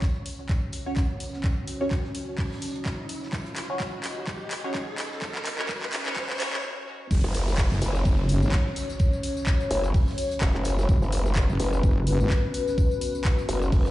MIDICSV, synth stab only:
0, 0, Header, 1, 2, 480
1, 0, Start_track
1, 0, Tempo, 472441
1, 1463, Time_signature, 4, 2, 24, 8
1, 14130, End_track
2, 0, Start_track
2, 0, Title_t, "Synth stab"
2, 0, Program_c, 0, 62
2, 877, Note_on_c, 0, 61, 81
2, 877, Note_on_c, 0, 66, 74
2, 877, Note_on_c, 0, 73, 92
2, 1002, Note_off_c, 0, 61, 0
2, 1002, Note_off_c, 0, 66, 0
2, 1002, Note_off_c, 0, 73, 0
2, 1837, Note_on_c, 0, 61, 94
2, 1837, Note_on_c, 0, 66, 87
2, 1837, Note_on_c, 0, 73, 100
2, 2054, Note_off_c, 0, 66, 0
2, 2055, Note_off_c, 0, 61, 0
2, 2055, Note_off_c, 0, 73, 0
2, 3756, Note_on_c, 0, 61, 83
2, 3757, Note_on_c, 0, 66, 75
2, 3757, Note_on_c, 0, 73, 87
2, 3882, Note_off_c, 0, 61, 0
2, 3882, Note_off_c, 0, 66, 0
2, 3882, Note_off_c, 0, 73, 0
2, 4717, Note_on_c, 0, 61, 83
2, 4717, Note_on_c, 0, 66, 75
2, 4717, Note_on_c, 0, 73, 93
2, 4842, Note_off_c, 0, 61, 0
2, 4842, Note_off_c, 0, 66, 0
2, 4842, Note_off_c, 0, 73, 0
2, 5676, Note_on_c, 0, 73, 95
2, 5677, Note_on_c, 0, 61, 86
2, 5677, Note_on_c, 0, 66, 79
2, 5765, Note_off_c, 0, 61, 0
2, 5765, Note_off_c, 0, 66, 0
2, 5765, Note_off_c, 0, 73, 0
2, 6157, Note_on_c, 0, 61, 90
2, 6157, Note_on_c, 0, 66, 83
2, 6157, Note_on_c, 0, 73, 100
2, 6245, Note_off_c, 0, 61, 0
2, 6245, Note_off_c, 0, 66, 0
2, 6245, Note_off_c, 0, 73, 0
2, 6262, Note_on_c, 0, 61, 87
2, 6262, Note_on_c, 0, 66, 81
2, 6262, Note_on_c, 0, 73, 100
2, 6412, Note_off_c, 0, 61, 0
2, 6412, Note_off_c, 0, 66, 0
2, 6412, Note_off_c, 0, 73, 0
2, 6502, Note_on_c, 0, 61, 90
2, 6503, Note_on_c, 0, 66, 86
2, 6503, Note_on_c, 0, 73, 101
2, 6653, Note_off_c, 0, 61, 0
2, 6653, Note_off_c, 0, 66, 0
2, 6653, Note_off_c, 0, 73, 0
2, 14130, End_track
0, 0, End_of_file